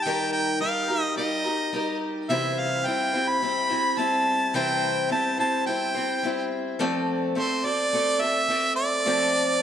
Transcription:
0.04 0.61 D#3 medium
0.04 0.60 G3 medium
0.04 0.60 D#4 medium
0.04 0.63 G4 medium
0.04 0.62 A#4 medium
0.04 0.32 G5 loud
0.32 0.59 G5 loud
0.60 0.89 G3 medium
0.60 0.90 D#4 medium
0.60 0.89 G4 medium
0.60 0.87 A#4 medium
0.60 1.02 F5 loud
0.88 1.16 D#4 soft
0.88 1.17 G4 medium
0.88 1.17 A#4 medium
1.02 1.13 D#5 loud
1.16 1.45 G3 medium
1.16 1.46 D#4 medium
1.16 1.44 G4 medium
1.16 1.43 A#4 medium
1.16 1.98 D#5 medium
1.44 1.73 D#4 soft
1.44 1.73 G4 medium
1.44 1.73 A#4 medium
1.73 2.30 G3 medium
1.73 2.30 D#4 medium
1.73 2.30 G4 medium
1.73 2.31 A#4 medium
2.29 2.86 C3 medium
2.29 2.86 E3 medium
2.29 2.84 G3 medium
2.29 2.86 C4 medium
2.29 2.86 E4 medium
2.29 2.88 C5 medium
2.29 2.61 E5 loud
2.59 2.88 F5 medium
2.85 3.14 G3 medium
2.85 3.14 C4 medium
2.85 3.13 E4 medium
2.85 3.12 C5 medium
2.85 3.30 G5 loud
3.13 3.41 G3 soft
3.13 3.41 C4 medium
3.13 3.42 E4 medium
3.13 3.42 C5 medium
3.28 4.00 B5 loud
3.42 3.70 G3 medium
3.42 3.70 C4 medium
3.42 3.69 E4 medium
3.42 3.68 C5 medium
3.69 3.96 G3 soft
3.69 3.97 C4 soft
3.69 3.98 E4 medium
3.69 3.98 C5 medium
3.97 4.53 G3 medium
3.97 4.54 C4 medium
3.97 4.54 E4 medium
3.97 4.55 C5 medium
3.97 4.55 A5 loud
4.54 5.11 C3 medium
4.54 5.11 E3 medium
4.54 5.08 G3 medium
4.54 5.10 C4 loud
4.54 5.10 E4 medium
4.54 5.12 C5 medium
4.54 5.07 G5 loud
5.09 5.38 G3 medium
5.09 5.39 C4 medium
5.09 5.38 E4 medium
5.09 5.37 C5 medium
5.09 5.38 A5 loud
5.38 5.65 G3 soft
5.38 5.66 C4 medium
5.38 5.67 E4 medium
5.38 5.67 C5 medium
5.38 5.65 A5 loud
5.66 5.95 G3 medium
5.66 5.95 C4 medium
5.66 5.95 E4 medium
5.66 5.93 C5 medium
5.66 6.47 G5 loud
5.94 6.22 G3 soft
5.94 6.23 C4 medium
5.94 6.24 E4 medium
5.94 6.23 C5 medium
6.23 6.79 G3 medium
6.23 6.80 C4 medium
6.23 6.80 E4 medium
6.23 6.80 C5 medium
6.79 7.36 F3 medium
6.79 7.34 A3 medium
6.79 7.36 C4 loud
6.79 7.36 A4 loud
6.79 7.36 D5 loud
7.35 7.64 A3 medium
7.35 7.64 C4 medium
7.35 7.65 A4 medium
7.35 7.67 C5 medium
7.35 7.63 D5 medium
7.64 7.93 C4 medium
7.64 7.93 A4 medium
7.64 7.92 D5 medium
7.64 8.22 D5 loud
7.93 8.21 A3 medium
7.93 8.21 C4 medium
7.93 8.20 A4 medium
7.93 8.19 D5 medium
8.20 8.48 C4 medium
8.20 8.49 A4 medium
8.20 8.48 D5 medium
8.20 8.75 E5 loud
8.48 9.05 A3 medium
8.48 9.07 C4 medium
8.48 9.06 A4 medium
8.48 9.06 D5 medium
8.76 9.62 D5 loud
9.06 9.62 F3 medium
9.06 9.60 A3 medium
9.06 9.61 C4 medium
9.06 9.62 A4 loud
9.06 9.62 D5 medium

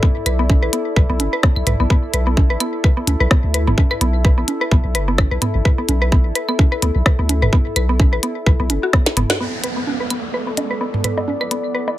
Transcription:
0.00 0.06 B3 medium
0.00 9.40 E4 medium
0.00 9.40 A4 medium
0.00 9.40 D5 medium
0.00 kick loud
0.26 0.64 B1 loud
0.26 0.32 B4 loud
0.26 closed hi-hat medium
0.26 claves medium
0.39 0.42 B3 medium
0.49 kick loud
0.49 high conga medium
0.63 0.69 A1 medium
0.63 0.67 B4 loud
0.73 0.77 B3 medium
0.73 closed hi-hat medium
0.96 1.05 B1 medium
0.96 1.02 B4 loud
0.96 kick loud
1.10 1.21 B1 medium
1.10 1.12 B3 medium
1.20 1.28 F#1 medium
1.20 closed hi-hat loud
1.20 high conga medium
1.33 1.37 B4 loud
1.43 1.47 B3 medium
1.43 kick loud
1.43 cross-stick loud
1.56 1.63 B1 medium
1.56 claves medium
1.67 1.75 B1 loud
1.67 1.72 B4 loud
1.67 closed hi-hat medium
1.67 mid tom medium
1.80 1.87 B1 loud
1.80 1.83 B3 medium
1.90 1.94 B3 medium
1.90 kick loud
2.14 2.52 B1 loud
2.14 2.19 B4 loud
2.14 closed hi-hat medium
2.27 2.30 B3 medium
2.37 kick loud
2.37 high conga medium
2.50 2.57 A1 medium
2.50 2.54 B4 loud
2.60 2.64 B3 medium
2.60 closed hi-hat medium
2.60 claves medium
2.84 2.89 B4 loud
2.84 kick loud
2.97 3.00 B3 medium
3.07 3.16 D2 medium
3.07 closed hi-hat medium
3.07 high conga medium
3.20 3.27 B1 loud
3.20 3.25 B4 loud
3.31 3.34 B3 medium
3.31 kick loud
3.31 cross-stick loud
3.44 3.69 D2 loud
3.54 3.60 B4 loud
3.54 closed hi-hat medium
3.67 3.74 F#1 medium
3.67 3.70 B3 medium
3.67 mid tom medium
3.78 kick loud
3.78 high conga medium
3.91 3.95 B4 loud
3.91 claves medium
4.01 4.39 B1 loud
4.01 4.05 B3 medium
4.01 closed hi-hat medium
4.25 4.30 B4 loud
4.25 kick loud
4.38 4.44 A1 medium
4.38 4.41 B3 medium
4.48 closed hi-hat medium
4.48 high conga medium
4.61 4.65 B4 loud
4.71 4.80 B1 medium
4.71 4.75 B3 medium
4.71 kick loud
4.84 4.96 B1 medium
4.95 5.20 F#1 medium
4.95 5.00 B4 loud
4.95 closed hi-hat medium
5.08 5.11 B3 medium
5.18 5.27 A1 loud
5.18 kick loud
5.18 cross-stick loud
5.18 high conga medium
5.18 claves medium
5.31 5.38 B1 medium
5.31 5.36 B4 medium
5.42 5.45 B3 medium
5.42 closed hi-hat medium
5.42 mid tom medium
5.55 5.62 A1 medium
5.65 5.71 B4 loud
5.65 kick loud
5.78 5.81 B3 medium
5.89 6.27 B1 medium
5.89 closed hi-hat medium
5.89 high conga medium
6.02 6.06 B4 loud
6.12 6.16 B3 medium
6.12 kick loud
6.25 6.32 A1 medium
6.35 6.41 B4 loud
6.35 closed hi-hat medium
6.49 6.51 B3 medium
6.49 claves medium
6.59 kick loud
6.59 high conga medium
6.72 6.76 B4 loud
6.82 6.91 D2 medium
6.82 6.86 B3 medium
6.82 closed hi-hat medium
6.96 7.02 B1 loud
7.06 7.11 B4 loud
7.06 kick loud
7.06 cross-stick loud
7.19 7.44 D2 loud
7.19 7.22 B3 medium
7.29 closed hi-hat medium
7.29 high conga medium
7.42 7.49 F#1 medium
7.42 7.47 B4 loud
7.42 mid tom medium
7.53 7.56 B3 medium
7.53 kick loud
7.76 8.14 B1 loud
7.76 7.82 B4 loud
7.76 closed hi-hat medium
7.76 claves medium
7.89 7.92 B3 medium
8.00 kick loud
8.00 high conga medium
8.13 8.19 A1 medium
8.13 8.17 B4 loud
8.23 8.27 B3 medium
8.23 closed hi-hat medium
8.46 8.55 B1 medium
8.46 8.52 B4 loud
8.46 kick loud
8.60 8.71 B1 medium
8.60 8.62 B3 medium
8.70 8.78 F#1 medium
8.70 closed hi-hat medium
8.70 high conga medium
8.83 8.86 F#4 medium
8.93 8.97 B3 medium
8.93 kick loud
8.93 cross-stick loud
9.06 snare medium
9.06 claves medium
9.17 9.25 F#1 medium
9.17 9.19 B3 loud
9.17 closed hi-hat medium
9.17 mid tom medium
9.30 9.33 F#4 loud
9.30 snare loud
9.40 11.98 B3 medium
9.40 9.44 B3 medium
9.40 downlifter medium
9.53 11.98 A4 medium
9.53 11.98 D5 medium
9.64 11.98 E4 medium
9.64 9.69 B4 loud
9.64 closed hi-hat medium
9.77 9.80 B3 medium
9.87 high conga medium
10.00 10.05 B4 medium
10.10 10.14 B3 medium
10.10 closed hi-hat medium
10.10 claves medium
10.34 10.39 B4 loud
10.47 10.50 B3 medium
10.57 closed hi-hat medium
10.57 high bongo medium
10.57 high conga medium
10.71 10.75 B4 loud
10.81 10.84 B3 medium
10.94 mid tom medium
11.04 11.10 B4 medium
11.04 closed hi-hat medium
11.04 mid tom medium
11.17 11.20 B3 medium
11.17 high bongo medium
11.28 high conga medium
11.41 11.45 B4 medium
11.41 claves medium
11.51 11.55 B3 medium
11.51 closed hi-hat medium
11.75 11.80 B4 loud
11.88 11.91 B3 medium
11.88 high bongo medium

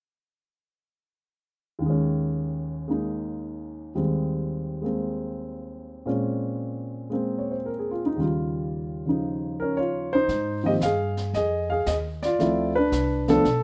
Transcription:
1.79 3.93 D#2 soft
1.79 3.94 D#3 soft
1.86 2.86 G#3 soft
1.86 3.98 C#4 soft
2.88 3.94 G#3 soft
2.88 3.95 A#3 soft
2.88 3.96 D#4 soft
3.95 6.06 D#2 soft
3.95 6.06 G3 soft
3.95 4.80 G#3 soft
3.95 4.84 C4 soft
4.82 6.05 G#3 soft
4.82 6.06 A#3 soft
4.82 6.05 C4 soft
6.06 8.17 A#2 soft
6.06 7.08 G#3 soft
6.06 7.12 C4 soft
6.06 8.18 C#4 soft
7.10 8.16 G#3 soft
7.10 8.17 A#3 soft
7.10 8.18 C4 soft
7.38 7.55 C#5 soft
7.51 7.70 C5 soft
7.66 7.90 A#4 soft
7.79 8.01 G#4 soft
7.91 8.07 F4 soft
8.06 8.24 D#4 soft
8.16 10.28 D#2 soft
8.16 9.04 C#3 soft
8.16 10.30 G3 soft
8.21 9.78 F4 soft
9.06 10.28 C#3 soft
9.06 10.29 F3 soft
9.06 10.13 D#4 soft
9.60 9.77 C#4 soft
9.60 9.75 A#4 medium
9.77 10.11 F4 soft
9.77 10.13 C#5 medium
10.13 10.62 D#4 soft
10.13 10.61 C5 medium
10.28 10.80 G#2 medium
10.28 brush sweep soft
10.28 kick soft
10.28 snare soft
10.64 10.79 D#3 soft
10.64 10.80 F3 soft
10.64 10.80 A#3 soft
10.64 10.80 C4 soft
10.64 10.71 D#5 medium
10.68 10.73 G4 medium
10.81 11.32 G2 medium
10.81 11.31 F5 medium
10.81 kick soft
10.81 snare soft
10.81 hi-hat pedal soft
10.85 11.32 G#4 medium
11.17 snare soft
11.33 11.85 F2 medium
11.33 11.69 G#4 medium
11.33 11.68 D#5 medium
11.33 brush sweep soft
11.33 kick soft
11.33 snare soft
11.70 11.87 G#4 medium
11.70 11.86 F5 medium
11.86 12.38 D#2 medium
11.86 11.97 G#4 medium
11.86 11.95 D#5 medium
11.86 kick soft
11.86 snare soft
11.86 hi-hat pedal soft
12.22 12.73 F4 medium
12.22 12.77 D5 medium
12.22 snare soft
12.39 12.91 D2 medium
12.39 12.72 F3 soft
12.39 12.72 A3 soft
12.39 12.72 C4 soft
12.39 12.73 E4 medium
12.39 brush sweep soft
12.39 kick soft
12.39 snare soft
12.76 13.26 D4 medium
12.76 13.30 B4 medium
12.92 13.43 C2 medium
12.92 kick soft
12.92 snare soft
12.92 hi-hat pedal soft
13.28 13.43 F3 soft
13.28 13.44 A3 soft
13.28 13.44 B3 soft
13.28 13.44 D4 medium
13.28 13.63 A4 medium
13.28 snare soft
13.44 13.63 B1 medium
13.44 brush sweep soft
13.44 kick soft
13.44 snare soft

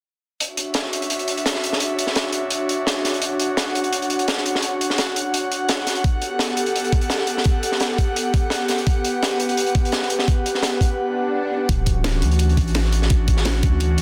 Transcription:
0.40 6.00 D4 medium
0.40 6.00 F#4 medium
0.40 6.00 C#5 medium
0.40 3.19 E5 medium
0.40 closed hi-hat medium
0.57 closed hi-hat medium
0.74 snare loud
0.74 closed hi-hat medium
0.93 closed hi-hat medium
1.02 closed hi-hat soft
1.10 closed hi-hat medium
1.19 closed hi-hat soft
1.28 closed hi-hat medium
1.37 closed hi-hat soft
1.46 snare loud
1.46 closed hi-hat medium
1.55 snare soft
1.64 closed hi-hat medium
1.73 snare medium
1.80 closed hi-hat medium
1.99 closed hi-hat medium
2.07 snare soft
2.15 snare loud
2.15 closed hi-hat medium
2.32 closed hi-hat medium
2.50 closed hi-hat medium
2.69 closed hi-hat medium
2.87 snare loud
2.87 closed hi-hat medium
3.04 snare soft
3.04 closed hi-hat medium
3.14 closed hi-hat soft
3.22 11.65 F#5 medium
3.22 closed hi-hat medium
3.40 closed hi-hat medium
3.57 snare loud
3.57 closed hi-hat medium
3.75 closed hi-hat medium
3.84 closed hi-hat soft
3.93 closed hi-hat medium
4.02 closed hi-hat soft
4.10 closed hi-hat medium
4.19 closed hi-hat soft
4.28 snare loud
4.28 closed hi-hat medium
4.37 snare soft
4.46 closed hi-hat medium
4.55 snare medium
4.62 closed hi-hat medium
4.81 closed hi-hat medium
4.90 snare soft
4.98 snare loud
4.98 closed hi-hat medium
5.16 closed hi-hat medium
5.34 closed hi-hat medium
5.52 closed hi-hat medium
5.69 snare loud
5.69 closed hi-hat medium
5.87 snare soft
5.87 closed hi-hat medium
5.95 closed hi-hat soft
6.04 11.65 B3 medium
6.04 11.65 G4 medium
6.04 8.84 A4 medium
6.04 kick loud
6.04 closed hi-hat medium
6.22 closed hi-hat medium
6.39 snare loud
6.39 closed hi-hat medium
6.57 closed hi-hat medium
6.66 closed hi-hat soft
6.76 closed hi-hat medium
6.84 closed hi-hat soft
6.92 kick loud
6.92 closed hi-hat medium
7.01 closed hi-hat soft
7.10 snare loud
7.10 closed hi-hat medium
7.18 snare soft
7.27 closed hi-hat medium
7.37 snare soft
7.44 kick loud
7.44 closed hi-hat medium
7.63 closed hi-hat medium
7.72 snare soft
7.80 snare loud
7.80 closed hi-hat medium
7.98 kick medium
7.98 closed hi-hat medium
8.16 closed hi-hat medium
8.34 kick loud
8.34 closed hi-hat medium
8.50 snare loud
8.50 closed hi-hat medium
8.68 snare soft
8.68 closed hi-hat medium
8.78 closed hi-hat soft
8.87 11.66 B4 medium
8.87 kick loud
8.87 closed hi-hat medium
9.04 closed hi-hat medium
9.23 snare loud
9.23 closed hi-hat medium
9.40 closed hi-hat medium
9.49 closed hi-hat soft
9.57 closed hi-hat medium
9.66 closed hi-hat soft
9.75 kick loud
9.75 closed hi-hat medium
9.85 closed hi-hat soft
9.92 snare loud
9.92 closed hi-hat medium
10.02 snare soft
10.10 closed hi-hat medium
10.19 snare medium
10.28 kick loud
10.28 closed hi-hat medium
10.46 closed hi-hat medium
10.55 snare soft
10.63 snare loud
10.63 closed hi-hat medium
10.81 kick medium
10.81 closed hi-hat medium
10.98 swell medium
11.69 12.23 D1 medium
11.69 14.02 E3 medium
11.69 14.02 C#4 medium
11.69 14.02 D4 medium
11.69 14.02 F#4 medium
11.69 kick loud
11.69 closed hi-hat medium
11.86 kick medium
11.86 closed hi-hat medium
12.04 snare loud
12.04 closed hi-hat loud
12.04 closed hi-hat medium
12.22 12.59 D2 loud
12.22 closed hi-hat medium
12.31 closed hi-hat soft
12.39 closed hi-hat medium
12.49 closed hi-hat soft
12.57 13.65 A1 medium
12.57 kick loud
12.57 closed hi-hat medium
12.67 closed hi-hat soft
12.75 snare loud
12.75 closed hi-hat medium
12.84 snare soft
12.93 closed hi-hat medium
13.02 snare medium
13.10 kick loud
13.10 closed hi-hat medium
13.10 closed hi-hat loud
13.28 kick medium
13.28 closed hi-hat medium
13.37 snare soft
13.45 snare loud
13.45 closed hi-hat medium
13.63 13.97 D2 loud
13.63 kick loud
13.63 closed hi-hat medium
13.80 closed hi-hat medium
13.98 closed hi-hat medium

